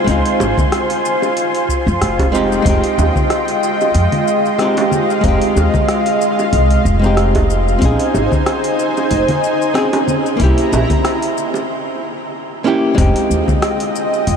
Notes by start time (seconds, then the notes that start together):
Already playing: F4 C5 G#5 C6
0.04 C#2 G#3 C4, kick, open hi-hat
0.08 D#4 F4, shaker
0.25 open hi-hat
0.40 G#1, high bongo, shaker
0.57 kick, low conga, shaker
0.72 cross-stick, open hi-hat, shaker
0.90 open hi-hat
1.05 shaker
1.22 high bongo, shaker
1.37 open hi-hat, shaker
1.55 open hi-hat
1.69 kick, shaker
1.87 F2, shaker
2.01 F1, cross-stick, open hi-hat, shaker
2.19 kick, open hi-hat, high bongo
2.32 G#3 C4 D#4 G4 D#5 G5, shaker
2.52 shaker
2.62 F1 G#3 C4, kick, open hi-hat
2.67 D#4 G4, shaker
2.84 open hi-hat
2.98 D#2, high bongo, shaker
3.16 kick, low conga, shaker
3.30 cross-stick, open hi-hat, shaker
3.48 open hi-hat
3.63 shaker
3.81 high bongo, shaker
3.95 F2, open hi-hat, shaker
4.12 open hi-hat, low conga
4.28 shaker
4.45 shaker
4.58 G#3 C4 D#4 G4, cross-stick, open hi-hat, shaker
4.77 open hi-hat, high bongo
4.92 F5, low conga, shaker
5.10 shaker
5.21 F1 G#3 C4, kick, open hi-hat, shaker
5.26 D#4 G4
5.42 open hi-hat
5.56 D#2, high bongo, shaker
5.74 kick, low conga, shaker
5.88 cross-stick, open hi-hat, shaker
6.06 open hi-hat
6.21 shaker
6.39 high bongo, shaker
6.53 C2, open hi-hat, shaker
6.71 open hi-hat
6.85 F1, kick, shaker
6.99 G#3 C4
7.04 D#4 G4, shaker
7.17 cross-stick, open hi-hat, shaker
7.35 kick, open hi-hat, high bongo
7.50 shaker
7.68 shaker
7.79 A#1 C4 C#4 D#4 C5 G#5, kick, open hi-hat, shaker
7.83 D#4 G#4
7.99 open hi-hat
8.14 G#1, high bongo, shaker
8.32 kick, low conga, shaker
8.46 cross-stick, open hi-hat, shaker
8.64 open hi-hat
8.79 shaker
8.97 high bongo, shaker
9.11 F1, open hi-hat, shaker
9.28 open hi-hat, low conga
9.44 shaker
9.62 shaker
9.74 C4 C#4 D#4 G#4, cross-stick, open hi-hat, shaker
9.93 open hi-hat, high bongo
10.08 low conga, shaker
10.26 shaker
10.37 C2 A#3 C#4 E4 A#5, kick, open hi-hat, shaker
10.41 E4 G4
10.58 open hi-hat
10.72 A#1, high bongo, shaker
10.90 kick, open hi-hat, low conga, shaker
11.05 cross-stick, open hi-hat, shaker
11.22 open hi-hat
11.38 shaker
11.54 high bongo, shaker
12.64 A#3 C#4 E4 G4
12.95 F1 G#3 C4 F4 D#5 G5, kick, open hi-hat
12.99 D#4 G4, shaker
13.16 open hi-hat
13.30 D#2, shaker
13.48 kick, low conga, shaker
13.62 cross-stick, open hi-hat, shaker
13.80 open hi-hat
13.96 shaker
14.14 shaker
14.27 F2, open hi-hat, shaker